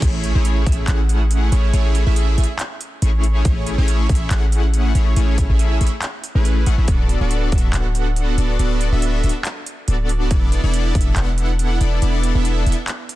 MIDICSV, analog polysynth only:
0, 0, Header, 1, 2, 480
1, 0, Start_track
1, 0, Key_signature, 3, "major"
1, 0, Tempo, 428571
1, 25, Time_signature, 4, 2, 24, 8
1, 14732, End_track
2, 0, Start_track
2, 0, Title_t, "Analog polysynth"
2, 0, Program_c, 0, 90
2, 22, Note_on_c, 0, 57, 97
2, 22, Note_on_c, 0, 64, 88
2, 22, Note_on_c, 0, 73, 106
2, 23, Note_on_c, 0, 61, 85
2, 23, Note_on_c, 0, 68, 85
2, 361, Note_off_c, 0, 57, 0
2, 361, Note_off_c, 0, 61, 0
2, 361, Note_off_c, 0, 64, 0
2, 361, Note_off_c, 0, 68, 0
2, 361, Note_off_c, 0, 73, 0
2, 391, Note_on_c, 0, 57, 101
2, 391, Note_on_c, 0, 61, 92
2, 391, Note_on_c, 0, 68, 95
2, 391, Note_on_c, 0, 73, 110
2, 392, Note_on_c, 0, 64, 92
2, 717, Note_off_c, 0, 57, 0
2, 717, Note_off_c, 0, 61, 0
2, 717, Note_off_c, 0, 64, 0
2, 717, Note_off_c, 0, 68, 0
2, 717, Note_off_c, 0, 73, 0
2, 742, Note_on_c, 0, 57, 99
2, 742, Note_on_c, 0, 61, 93
2, 742, Note_on_c, 0, 68, 92
2, 742, Note_on_c, 0, 76, 108
2, 743, Note_on_c, 0, 64, 90
2, 956, Note_off_c, 0, 61, 0
2, 957, Note_off_c, 0, 57, 0
2, 957, Note_off_c, 0, 64, 0
2, 957, Note_off_c, 0, 68, 0
2, 957, Note_off_c, 0, 76, 0
2, 981, Note_on_c, 0, 57, 91
2, 981, Note_on_c, 0, 61, 83
2, 981, Note_on_c, 0, 68, 82
2, 982, Note_on_c, 0, 64, 82
2, 982, Note_on_c, 0, 78, 98
2, 1676, Note_off_c, 0, 57, 0
2, 1676, Note_off_c, 0, 61, 0
2, 1676, Note_off_c, 0, 64, 0
2, 1676, Note_off_c, 0, 68, 0
2, 1676, Note_off_c, 0, 78, 0
2, 1702, Note_on_c, 0, 64, 73
2, 1703, Note_on_c, 0, 57, 76
2, 1703, Note_on_c, 0, 61, 72
2, 1703, Note_on_c, 0, 68, 70
2, 1703, Note_on_c, 0, 73, 85
2, 1916, Note_off_c, 0, 64, 0
2, 1917, Note_off_c, 0, 57, 0
2, 1917, Note_off_c, 0, 61, 0
2, 1917, Note_off_c, 0, 68, 0
2, 1917, Note_off_c, 0, 73, 0
2, 1942, Note_on_c, 0, 57, 99
2, 1942, Note_on_c, 0, 64, 90
2, 1942, Note_on_c, 0, 68, 89
2, 1942, Note_on_c, 0, 73, 108
2, 1943, Note_on_c, 0, 61, 91
2, 2281, Note_off_c, 0, 57, 0
2, 2281, Note_off_c, 0, 61, 0
2, 2281, Note_off_c, 0, 64, 0
2, 2281, Note_off_c, 0, 68, 0
2, 2281, Note_off_c, 0, 73, 0
2, 2311, Note_on_c, 0, 61, 91
2, 2312, Note_on_c, 0, 64, 88
2, 2313, Note_on_c, 0, 57, 104
2, 2313, Note_on_c, 0, 68, 91
2, 2313, Note_on_c, 0, 76, 111
2, 2637, Note_off_c, 0, 57, 0
2, 2637, Note_off_c, 0, 61, 0
2, 2637, Note_off_c, 0, 64, 0
2, 2637, Note_off_c, 0, 68, 0
2, 2637, Note_off_c, 0, 76, 0
2, 2664, Note_on_c, 0, 57, 79
2, 2664, Note_on_c, 0, 61, 72
2, 2664, Note_on_c, 0, 64, 71
2, 2664, Note_on_c, 0, 68, 72
2, 2664, Note_on_c, 0, 76, 87
2, 2774, Note_off_c, 0, 57, 0
2, 2774, Note_off_c, 0, 61, 0
2, 2774, Note_off_c, 0, 68, 0
2, 2775, Note_off_c, 0, 64, 0
2, 2775, Note_off_c, 0, 76, 0
2, 3384, Note_on_c, 0, 57, 86
2, 3384, Note_on_c, 0, 61, 82
2, 3384, Note_on_c, 0, 68, 82
2, 3384, Note_on_c, 0, 73, 97
2, 3385, Note_on_c, 0, 64, 81
2, 3837, Note_off_c, 0, 57, 0
2, 3837, Note_off_c, 0, 73, 0
2, 3838, Note_off_c, 0, 61, 0
2, 3838, Note_off_c, 0, 64, 0
2, 3838, Note_off_c, 0, 68, 0
2, 3865, Note_on_c, 0, 57, 97
2, 3865, Note_on_c, 0, 61, 85
2, 3865, Note_on_c, 0, 64, 88
2, 3865, Note_on_c, 0, 68, 86
2, 3866, Note_on_c, 0, 73, 107
2, 4202, Note_off_c, 0, 57, 0
2, 4202, Note_off_c, 0, 64, 0
2, 4203, Note_off_c, 0, 61, 0
2, 4203, Note_off_c, 0, 68, 0
2, 4203, Note_off_c, 0, 73, 0
2, 4235, Note_on_c, 0, 57, 97
2, 4235, Note_on_c, 0, 61, 93
2, 4235, Note_on_c, 0, 64, 91
2, 4235, Note_on_c, 0, 68, 93
2, 4235, Note_on_c, 0, 73, 111
2, 4558, Note_off_c, 0, 64, 0
2, 4558, Note_off_c, 0, 73, 0
2, 4559, Note_off_c, 0, 57, 0
2, 4559, Note_off_c, 0, 61, 0
2, 4559, Note_off_c, 0, 68, 0
2, 4586, Note_on_c, 0, 64, 92
2, 4587, Note_on_c, 0, 57, 99
2, 4587, Note_on_c, 0, 61, 92
2, 4587, Note_on_c, 0, 68, 91
2, 4587, Note_on_c, 0, 76, 114
2, 4799, Note_off_c, 0, 57, 0
2, 4799, Note_off_c, 0, 61, 0
2, 4799, Note_off_c, 0, 64, 0
2, 4799, Note_off_c, 0, 68, 0
2, 4799, Note_off_c, 0, 76, 0
2, 4827, Note_on_c, 0, 57, 89
2, 4827, Note_on_c, 0, 61, 84
2, 4827, Note_on_c, 0, 64, 83
2, 4827, Note_on_c, 0, 78, 99
2, 4828, Note_on_c, 0, 68, 82
2, 5519, Note_off_c, 0, 57, 0
2, 5519, Note_off_c, 0, 61, 0
2, 5519, Note_off_c, 0, 64, 0
2, 5519, Note_off_c, 0, 68, 0
2, 5519, Note_off_c, 0, 78, 0
2, 5546, Note_on_c, 0, 61, 70
2, 5547, Note_on_c, 0, 57, 79
2, 5547, Note_on_c, 0, 64, 70
2, 5547, Note_on_c, 0, 68, 71
2, 5547, Note_on_c, 0, 73, 83
2, 5759, Note_off_c, 0, 57, 0
2, 5759, Note_off_c, 0, 61, 0
2, 5759, Note_off_c, 0, 64, 0
2, 5759, Note_off_c, 0, 68, 0
2, 5759, Note_off_c, 0, 73, 0
2, 5787, Note_on_c, 0, 61, 89
2, 5787, Note_on_c, 0, 64, 93
2, 5787, Note_on_c, 0, 68, 90
2, 5788, Note_on_c, 0, 57, 95
2, 5788, Note_on_c, 0, 73, 109
2, 6123, Note_off_c, 0, 61, 0
2, 6123, Note_off_c, 0, 64, 0
2, 6124, Note_off_c, 0, 57, 0
2, 6124, Note_off_c, 0, 68, 0
2, 6124, Note_off_c, 0, 73, 0
2, 6155, Note_on_c, 0, 64, 88
2, 6155, Note_on_c, 0, 76, 107
2, 6156, Note_on_c, 0, 57, 97
2, 6156, Note_on_c, 0, 61, 92
2, 6156, Note_on_c, 0, 68, 92
2, 6479, Note_off_c, 0, 57, 0
2, 6479, Note_off_c, 0, 61, 0
2, 6479, Note_off_c, 0, 64, 0
2, 6479, Note_off_c, 0, 68, 0
2, 6479, Note_off_c, 0, 76, 0
2, 6506, Note_on_c, 0, 57, 79
2, 6506, Note_on_c, 0, 61, 71
2, 6506, Note_on_c, 0, 64, 69
2, 6506, Note_on_c, 0, 76, 84
2, 6507, Note_on_c, 0, 68, 70
2, 6615, Note_off_c, 0, 64, 0
2, 6615, Note_off_c, 0, 76, 0
2, 6616, Note_off_c, 0, 57, 0
2, 6616, Note_off_c, 0, 61, 0
2, 6616, Note_off_c, 0, 68, 0
2, 7115, Note_on_c, 0, 61, 74
2, 7116, Note_on_c, 0, 57, 82
2, 7116, Note_on_c, 0, 64, 70
2, 7116, Note_on_c, 0, 68, 72
2, 7116, Note_on_c, 0, 71, 89
2, 7439, Note_off_c, 0, 57, 0
2, 7439, Note_off_c, 0, 61, 0
2, 7439, Note_off_c, 0, 64, 0
2, 7439, Note_off_c, 0, 68, 0
2, 7439, Note_off_c, 0, 71, 0
2, 7465, Note_on_c, 0, 61, 91
2, 7465, Note_on_c, 0, 64, 93
2, 7465, Note_on_c, 0, 68, 93
2, 7465, Note_on_c, 0, 78, 112
2, 7466, Note_on_c, 0, 57, 99
2, 7562, Note_off_c, 0, 78, 0
2, 7563, Note_off_c, 0, 57, 0
2, 7563, Note_off_c, 0, 61, 0
2, 7563, Note_off_c, 0, 64, 0
2, 7563, Note_off_c, 0, 68, 0
2, 7595, Note_on_c, 0, 68, 68
2, 7596, Note_on_c, 0, 57, 78
2, 7596, Note_on_c, 0, 61, 69
2, 7596, Note_on_c, 0, 64, 67
2, 7596, Note_on_c, 0, 76, 85
2, 7679, Note_off_c, 0, 57, 0
2, 7679, Note_off_c, 0, 61, 0
2, 7679, Note_off_c, 0, 64, 0
2, 7679, Note_off_c, 0, 68, 0
2, 7679, Note_off_c, 0, 76, 0
2, 7706, Note_on_c, 0, 59, 95
2, 7706, Note_on_c, 0, 62, 88
2, 7706, Note_on_c, 0, 66, 87
2, 7706, Note_on_c, 0, 69, 87
2, 7706, Note_on_c, 0, 74, 107
2, 8043, Note_off_c, 0, 59, 0
2, 8043, Note_off_c, 0, 62, 0
2, 8043, Note_off_c, 0, 66, 0
2, 8043, Note_off_c, 0, 69, 0
2, 8043, Note_off_c, 0, 74, 0
2, 8074, Note_on_c, 0, 59, 98
2, 8074, Note_on_c, 0, 62, 91
2, 8074, Note_on_c, 0, 66, 94
2, 8074, Note_on_c, 0, 69, 92
2, 8075, Note_on_c, 0, 74, 112
2, 8398, Note_off_c, 0, 59, 0
2, 8398, Note_off_c, 0, 62, 0
2, 8398, Note_off_c, 0, 66, 0
2, 8398, Note_off_c, 0, 69, 0
2, 8398, Note_off_c, 0, 74, 0
2, 8426, Note_on_c, 0, 59, 100
2, 8426, Note_on_c, 0, 62, 92
2, 8426, Note_on_c, 0, 66, 91
2, 8426, Note_on_c, 0, 69, 90
2, 8427, Note_on_c, 0, 76, 109
2, 8638, Note_off_c, 0, 69, 0
2, 8639, Note_off_c, 0, 59, 0
2, 8639, Note_off_c, 0, 62, 0
2, 8639, Note_off_c, 0, 66, 0
2, 8639, Note_off_c, 0, 76, 0
2, 8666, Note_on_c, 0, 59, 90
2, 8666, Note_on_c, 0, 66, 83
2, 8666, Note_on_c, 0, 78, 100
2, 8667, Note_on_c, 0, 62, 82
2, 8667, Note_on_c, 0, 69, 85
2, 9359, Note_off_c, 0, 59, 0
2, 9359, Note_off_c, 0, 62, 0
2, 9359, Note_off_c, 0, 66, 0
2, 9359, Note_off_c, 0, 69, 0
2, 9359, Note_off_c, 0, 78, 0
2, 9386, Note_on_c, 0, 59, 77
2, 9386, Note_on_c, 0, 62, 72
2, 9386, Note_on_c, 0, 66, 70
2, 9387, Note_on_c, 0, 69, 71
2, 9387, Note_on_c, 0, 74, 86
2, 9598, Note_off_c, 0, 59, 0
2, 9598, Note_off_c, 0, 66, 0
2, 9599, Note_off_c, 0, 62, 0
2, 9599, Note_off_c, 0, 69, 0
2, 9599, Note_off_c, 0, 74, 0
2, 9626, Note_on_c, 0, 59, 99
2, 9626, Note_on_c, 0, 62, 90
2, 9626, Note_on_c, 0, 69, 87
2, 9626, Note_on_c, 0, 74, 108
2, 9627, Note_on_c, 0, 66, 94
2, 9963, Note_off_c, 0, 59, 0
2, 9963, Note_off_c, 0, 62, 0
2, 9963, Note_off_c, 0, 66, 0
2, 9963, Note_off_c, 0, 69, 0
2, 9963, Note_off_c, 0, 74, 0
2, 9995, Note_on_c, 0, 59, 100
2, 9995, Note_on_c, 0, 62, 90
2, 9995, Note_on_c, 0, 66, 92
2, 9995, Note_on_c, 0, 69, 91
2, 9995, Note_on_c, 0, 76, 112
2, 10318, Note_off_c, 0, 59, 0
2, 10318, Note_off_c, 0, 69, 0
2, 10319, Note_off_c, 0, 62, 0
2, 10319, Note_off_c, 0, 66, 0
2, 10319, Note_off_c, 0, 76, 0
2, 10344, Note_on_c, 0, 69, 72
2, 10345, Note_on_c, 0, 59, 80
2, 10345, Note_on_c, 0, 62, 74
2, 10345, Note_on_c, 0, 66, 74
2, 10345, Note_on_c, 0, 76, 88
2, 10455, Note_off_c, 0, 59, 0
2, 10455, Note_off_c, 0, 62, 0
2, 10455, Note_off_c, 0, 66, 0
2, 10455, Note_off_c, 0, 69, 0
2, 10455, Note_off_c, 0, 76, 0
2, 11065, Note_on_c, 0, 59, 90
2, 11065, Note_on_c, 0, 62, 79
2, 11065, Note_on_c, 0, 66, 80
2, 11065, Note_on_c, 0, 74, 96
2, 11066, Note_on_c, 0, 69, 81
2, 11518, Note_off_c, 0, 59, 0
2, 11518, Note_off_c, 0, 62, 0
2, 11518, Note_off_c, 0, 66, 0
2, 11518, Note_off_c, 0, 69, 0
2, 11518, Note_off_c, 0, 74, 0
2, 11545, Note_on_c, 0, 59, 93
2, 11545, Note_on_c, 0, 62, 88
2, 11545, Note_on_c, 0, 64, 87
2, 11546, Note_on_c, 0, 69, 91
2, 11546, Note_on_c, 0, 74, 107
2, 11882, Note_off_c, 0, 64, 0
2, 11883, Note_off_c, 0, 59, 0
2, 11883, Note_off_c, 0, 62, 0
2, 11883, Note_off_c, 0, 69, 0
2, 11883, Note_off_c, 0, 74, 0
2, 11911, Note_on_c, 0, 59, 101
2, 11911, Note_on_c, 0, 69, 95
2, 11912, Note_on_c, 0, 62, 92
2, 11912, Note_on_c, 0, 64, 92
2, 11913, Note_on_c, 0, 74, 111
2, 12237, Note_off_c, 0, 59, 0
2, 12237, Note_off_c, 0, 62, 0
2, 12237, Note_off_c, 0, 64, 0
2, 12237, Note_off_c, 0, 69, 0
2, 12237, Note_off_c, 0, 74, 0
2, 12264, Note_on_c, 0, 64, 92
2, 12264, Note_on_c, 0, 69, 92
2, 12265, Note_on_c, 0, 59, 99
2, 12265, Note_on_c, 0, 62, 92
2, 12265, Note_on_c, 0, 76, 113
2, 12477, Note_off_c, 0, 69, 0
2, 12478, Note_off_c, 0, 59, 0
2, 12478, Note_off_c, 0, 62, 0
2, 12478, Note_off_c, 0, 64, 0
2, 12478, Note_off_c, 0, 76, 0
2, 12505, Note_on_c, 0, 59, 92
2, 12505, Note_on_c, 0, 62, 83
2, 12505, Note_on_c, 0, 64, 82
2, 12505, Note_on_c, 0, 69, 84
2, 12505, Note_on_c, 0, 78, 103
2, 13198, Note_off_c, 0, 59, 0
2, 13198, Note_off_c, 0, 62, 0
2, 13198, Note_off_c, 0, 64, 0
2, 13198, Note_off_c, 0, 69, 0
2, 13198, Note_off_c, 0, 78, 0
2, 13225, Note_on_c, 0, 59, 75
2, 13225, Note_on_c, 0, 62, 72
2, 13225, Note_on_c, 0, 64, 71
2, 13225, Note_on_c, 0, 74, 86
2, 13226, Note_on_c, 0, 69, 72
2, 13438, Note_off_c, 0, 59, 0
2, 13438, Note_off_c, 0, 62, 0
2, 13438, Note_off_c, 0, 64, 0
2, 13438, Note_off_c, 0, 69, 0
2, 13438, Note_off_c, 0, 74, 0
2, 13463, Note_on_c, 0, 59, 97
2, 13463, Note_on_c, 0, 62, 90
2, 13463, Note_on_c, 0, 69, 90
2, 13464, Note_on_c, 0, 64, 90
2, 13464, Note_on_c, 0, 74, 111
2, 13802, Note_off_c, 0, 59, 0
2, 13802, Note_off_c, 0, 62, 0
2, 13802, Note_off_c, 0, 64, 0
2, 13802, Note_off_c, 0, 69, 0
2, 13802, Note_off_c, 0, 74, 0
2, 13832, Note_on_c, 0, 59, 104
2, 13832, Note_on_c, 0, 64, 89
2, 13832, Note_on_c, 0, 69, 93
2, 13832, Note_on_c, 0, 76, 109
2, 13833, Note_on_c, 0, 62, 93
2, 14157, Note_off_c, 0, 59, 0
2, 14157, Note_off_c, 0, 62, 0
2, 14157, Note_off_c, 0, 64, 0
2, 14157, Note_off_c, 0, 69, 0
2, 14157, Note_off_c, 0, 76, 0
2, 14182, Note_on_c, 0, 64, 72
2, 14183, Note_on_c, 0, 59, 79
2, 14183, Note_on_c, 0, 62, 72
2, 14183, Note_on_c, 0, 69, 71
2, 14183, Note_on_c, 0, 76, 86
2, 14294, Note_off_c, 0, 59, 0
2, 14294, Note_off_c, 0, 62, 0
2, 14294, Note_off_c, 0, 64, 0
2, 14294, Note_off_c, 0, 69, 0
2, 14294, Note_off_c, 0, 76, 0
2, 14732, End_track
0, 0, End_of_file